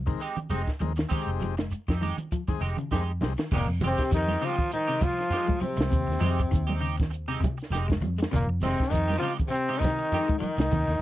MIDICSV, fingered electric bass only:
0, 0, Header, 1, 3, 480
1, 0, Start_track
1, 0, Key_signature, -4, "minor"
1, 0, Tempo, 600601
1, 886, Time_signature, 4, 2, 24, 8
1, 8803, End_track
2, 0, Start_track
2, 0, Title_t, "Fingered electric bass"
2, 0, Program_c, 0, 33
2, 0, Note_on_c, 0, 36, 85
2, 116, Note_off_c, 0, 36, 0
2, 409, Note_on_c, 0, 29, 88
2, 509, Note_off_c, 0, 29, 0
2, 642, Note_on_c, 0, 39, 76
2, 830, Note_off_c, 0, 39, 0
2, 1012, Note_on_c, 0, 29, 71
2, 1386, Note_off_c, 0, 29, 0
2, 1508, Note_on_c, 0, 41, 78
2, 1691, Note_off_c, 0, 41, 0
2, 2084, Note_on_c, 0, 29, 81
2, 2187, Note_off_c, 0, 29, 0
2, 2336, Note_on_c, 0, 41, 88
2, 2569, Note_on_c, 0, 36, 84
2, 2581, Note_off_c, 0, 41, 0
2, 2671, Note_off_c, 0, 36, 0
2, 2811, Note_on_c, 0, 29, 97
2, 2912, Note_off_c, 0, 29, 0
2, 2934, Note_on_c, 0, 41, 79
2, 3036, Note_on_c, 0, 29, 97
2, 3048, Note_off_c, 0, 41, 0
2, 3143, Note_off_c, 0, 29, 0
2, 3297, Note_on_c, 0, 41, 114
2, 3480, Note_off_c, 0, 41, 0
2, 4617, Note_on_c, 0, 36, 90
2, 4703, Note_off_c, 0, 36, 0
2, 4741, Note_on_c, 0, 39, 98
2, 4839, Note_off_c, 0, 39, 0
2, 4856, Note_on_c, 0, 39, 76
2, 4943, Note_off_c, 0, 39, 0
2, 4966, Note_on_c, 0, 41, 97
2, 5153, Note_off_c, 0, 41, 0
2, 5224, Note_on_c, 0, 39, 103
2, 5960, Note_off_c, 0, 39, 0
2, 6161, Note_on_c, 0, 29, 84
2, 6400, Note_on_c, 0, 41, 91
2, 6412, Note_off_c, 0, 29, 0
2, 6589, Note_off_c, 0, 41, 0
2, 6661, Note_on_c, 0, 29, 100
2, 6758, Note_off_c, 0, 29, 0
2, 6766, Note_on_c, 0, 41, 89
2, 6877, Note_on_c, 0, 29, 92
2, 6889, Note_off_c, 0, 41, 0
2, 6983, Note_off_c, 0, 29, 0
2, 7138, Note_on_c, 0, 41, 104
2, 7320, Note_off_c, 0, 41, 0
2, 8454, Note_on_c, 0, 36, 91
2, 8539, Note_off_c, 0, 36, 0
2, 8567, Note_on_c, 0, 39, 93
2, 8667, Note_off_c, 0, 39, 0
2, 8694, Note_on_c, 0, 39, 85
2, 8778, Note_off_c, 0, 39, 0
2, 8803, End_track
3, 0, Start_track
3, 0, Title_t, "Muted fingered electric bass strokes"
3, 4485, Note_on_c, 9, 29, 37
3, 4565, Note_off_c, 9, 29, 0
3, 8327, Note_on_c, 9, 29, 39
3, 8407, Note_off_c, 9, 29, 0
3, 8803, End_track
0, 0, End_of_file